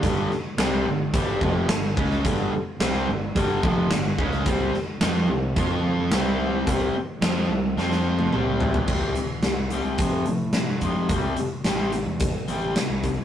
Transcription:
<<
  \new Staff \with { instrumentName = "Distorted electric guitar" } { \clef bass \time 4/4 \key c \major \tempo 4 = 108 <g, d g>8 r8 <c g c'>8 <g, d>8 <g, d g>8 <f, c f>8 <g, d>8 <cis aes cis'>8 | <g, d g>8 r8 <c g c'>8 <g, d>8 <g, d g>8 <f, c f>8 <g, d>8 <cis aes cis'>8 | <c g c'>8 r8 <f c' f'>8 <c g>8 <f c' f'>4 <c g c'>4 | <c g c'>8 r8 <f c' f'>8 <c g>8 <f c' f'>4 <c g c'>4 |
r1 | r1 | }
  \new Staff \with { instrumentName = "Overdriven electric guitar" } { \clef bass \time 4/4 \key c \major <g, d g>8 r8 <c g c'>8 <g, d>8 <g, d g>8 <f, c f>8 <g, d>8 <cis aes cis'>8 | <g, d g>8 r8 <c g c'>8 <g, d>8 <g, d g>8 <f, c f>8 <g, d>8 <cis aes cis'>8 | <c g c'>8 r8 <f c' f'>8 <c g>8 <f c' f'>4 <c g c'>4 | <c g c'>8 r8 <f c' f'>8 <c g>8 <f c' f'>4 <c g c'>4 |
<c g c'>8 <c g>8 <c g>8 <c g c'>8 <f, c f>8 <f, c>8 <f, c>8 <f, c f>8 | <c g c'>8 <c g>8 <c g c'>8 <c g>8 <c g>8 <c g c'>8 <c g>8 <c g>8 | }
  \new Staff \with { instrumentName = "Fingered electric bass" } { \clef bass \time 4/4 \key c \major g,,8 r8 c,8 g,,8 g,,8 f,,8 g,,8 cis,8 | g,,8 r8 c,8 g,,8 g,,8 f,,8 g,,8 cis,8 | c,8 r8 f,8 c,8 f,4 c,4 | c,8 r8 f,8 c,8 f,4 c,4 |
c,8 r8 c,8. c,16 f,8 a,8. g,8 r16 | c,8 r8 a,,8. e,8 r16 a,,8 r16 c,8 r16 | }
  \new DrumStaff \with { instrumentName = "Drums" } \drummode { \time 4/4 <hh bd>8 sn8 <hh sn>4 <hh bd>8 bd8 <hh sn>8 bd16 sn16 | <hh bd>4 <hh sn>4 <hh bd>8 bd8 <hh sn>8 bd16 sn16 | <hh bd>8 sn8 <hh sn>4 <hh bd>4 <hh sn>4 | <hh bd>4 <hh sn>4 sn16 sn8 tommh16 toml8 tomfh16 tomfh16 |
<cymc bd>8 hh8 <hh sn>8 hh8 <hh bd>8 hh8 <hh sn>8 <hh bd>8 | <hh bd>8 hh8 <hh sn>8 hh8 <hh bd>8 hh8 <hh sn>8 <hh bd>8 | }
>>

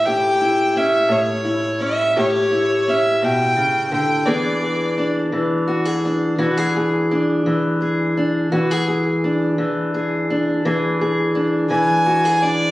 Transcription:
<<
  \new Staff \with { instrumentName = "Fiddle" } { \time 12/8 \key e \mixolydian \tempo 4. = 56 g''4 e''8 cis''4 e''8 cis''4 e''8 g''4 g''8 | d''4 r1 r4 | r1 r8 gis''4 d''8 | }
  \new Staff \with { instrumentName = "Steel-string acoustic guitar" } { \time 12/8 \key e \mixolydian << { g'8 e'8 cis'4 e'8 cis'8 g'8 e'8 cis'2 | <b d' gis'>8 gis'8 d'4 fis'16 gis'16 d'8 fis'16 gis'16 gis'8 d'4 gis'8 d'8 | fis'16 gis'16 gis'8 d'4 gis'8 d'8 gis'8 gis'8 d'4 fis'16 gis'16 d'8 | } \\ { a,4. a,4. a,4. b,8 cis8 d8 | e4. e4. e4. e4. | e4. e4. e4. e4. | } >> }
>>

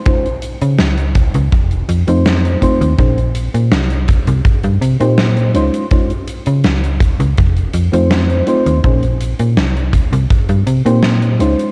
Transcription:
<<
  \new Staff \with { instrumentName = "FM electric piano" } { \time 4/4 \key c \phrygian \tempo 4 = 82 <aes des' ees' f' c''>16 r2 r8 <a c' ees' f' c''>8. <a c' ees' f' c''>8 | <bes des' ees' aes' c''>16 r2 r8 <bes c' ees' g' c''>8. <aes des' ees' f' c''>8 | <aes des' ees' f' c''>16 r2 r8 <a c' ees' f' c''>8. <a c' ees' f' c''>8 | <bes des' ees' aes' c''>16 r2 r8 <bes c' ees' g' c''>8. <aes des' ees' f' c''>8 | }
  \new Staff \with { instrumentName = "FM bass" } { \clef bass \time 4/4 \key c \phrygian r8. des16 des,8. des,16 f,,8 f,16 f,8. r16 ees,16 | bes,,8. bes,16 c,8. c,16 g,16 g,16 c16 bes,8. des,16 r16 | r8. des16 des,8. des,16 f,,8 f,16 f,8. r16 ees,16 | bes,,8. bes,16 c,8. c,16 g,16 g,16 c16 bes,8. des,16 r16 | }
  \new DrumStaff \with { instrumentName = "Drums" } \drummode { \time 4/4 <hh bd>16 hh16 hh16 hh16 <hh sn>16 hh16 <hh bd>16 hh16 <hh bd>16 hh16 hh16 hh16 <hh sn>16 hh16 <hh bd>16 hh16 | <hh bd>16 hh16 hh16 hh16 <hh sn>16 hh16 <hh bd>16 hh16 <hh bd>16 hh16 hh16 hh16 <hh sn>16 hh16 hh16 hh16 | <hh bd>16 hh16 hh16 hh16 <hh sn>16 hh16 <hh bd>16 hh16 <hh bd>16 hh16 hh16 hh16 <hh sn>16 hh16 hh16 hh16 | <hh bd>16 hh16 hh16 hh16 <hh sn>16 hh16 <hh bd>16 hh16 <hh bd>16 hh16 hh16 hh16 <hh sn>16 hh16 hh16 hh16 | }
>>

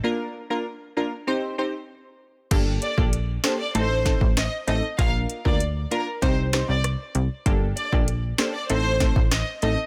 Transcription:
<<
  \new Staff \with { instrumentName = "Violin section" } { \time 4/4 \key g \minor \tempo 4 = 97 r1 | r8 d''16 r8. c''16 d''16 c''8. r16 ees''16 r16 ees''16 r16 | f''16 r8 d''16 r8 bes'16 r16 c''16 r8 d''16 r4 | r8 d''16 r8. c''16 d''16 c''8. r16 ees''16 r16 ees''16 r16 | }
  \new Staff \with { instrumentName = "Synth stab" } { \time 4/4 \key g \minor <bes d' f' bes'>8. <bes d' f' bes'>16 r8 <bes d' f' bes'>16 r16 <c' ees' g' c''>8 <c' ees' g' c''>16 r4 r16 | <bes d' g' a'>8. <bes d' g' a'>16 r8 <bes d' g' a'>16 r16 <a c' ees' a'>8 <a c' ees' a'>16 r8. <a c' ees' a'>16 r16 | <bes d' f' bes'>8. <bes d' f' bes'>16 r8 <bes d' f' bes'>16 r16 <c' ees' g' c''>8 <c' ees' g' c''>16 r4 r16 | <bes d' g' a'>8. <bes d' g' a'>16 r8 <bes d' g' a'>16 r16 <a c' ees' a'>8 <a c' ees' a'>16 r8. <a c' ees' a'>16 r16 | }
  \new Staff \with { instrumentName = "Analog synth bass" } { \clef bass \time 4/4 \key g \minor r1 | g,,8 r16 bes,,8. r8 a,,8. a,,8 r16 a,,16 r16 | bes,,8 r16 d,8. r8 c,8. c,8 r16 c,16 r16 | g,,8 r16 bes,,8. r8 a,,8. a,,8 r16 a,,16 r16 | }
  \new DrumStaff \with { instrumentName = "Drums" } \drummode { \time 4/4 r4 r4 r4 r4 | <cymc hh bd>8 hh16 bd16 hh8 <hh ss sn>8 hh8 <hh bd sn>16 bd16 <hh ss sn>8 hh8 | <hh bd>8 hh16 bd16 hh8 hh8 <hh bd>8 <hh ss sn>8 <hh ss>8 hh8 | <hh bd>8 hh16 bd16 hh8 <hh ss sn>8 hh8 <hh bd sn>16 bd16 <hh ss sn>8 hh8 | }
>>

